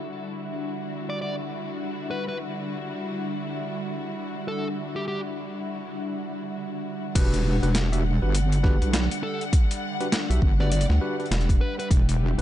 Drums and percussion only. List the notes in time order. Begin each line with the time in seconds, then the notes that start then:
7.15 kick, closed hi-hat, crash
7.34 closed hi-hat
7.63 closed hi-hat
7.75 snare, closed hi-hat
7.93 closed hi-hat
8.35 closed hi-hat
8.52 closed hi-hat
8.64 kick, snare
8.82 closed hi-hat
8.93 snare, closed hi-hat
9.11 closed hi-hat
9.41 closed hi-hat
9.53 kick, closed hi-hat
9.71 closed hi-hat
10.01 closed hi-hat
10.12 snare, closed hi-hat
10.31 closed hi-hat
10.42 kick
10.60 snare
10.72 closed hi-hat
10.81 closed hi-hat
10.90 snare
11.20 closed hi-hat
11.26 closed hi-hat
11.32 snare, closed hi-hat
11.41 closed hi-hat
11.49 kick, closed hi-hat
11.80 closed hi-hat
11.91 kick, closed hi-hat
12.09 closed hi-hat
12.39 closed hi-hat